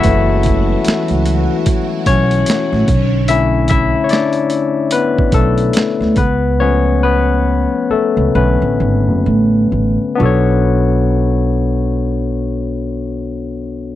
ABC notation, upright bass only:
X:1
M:4/4
L:1/16
Q:"Swing 16ths" 1/4=70
K:Bm
V:1 name="Upright bass" clef=bass
F,,,4 z C,,2 z3 B,,,2 z A,,, B,,,2- | B,,,4 z6 B,,,2 z D,, C,,2- | C,,6 z C,, B,,, A,,, ^G,,, F,,, A,,,2 A,,, z | B,,,16 |]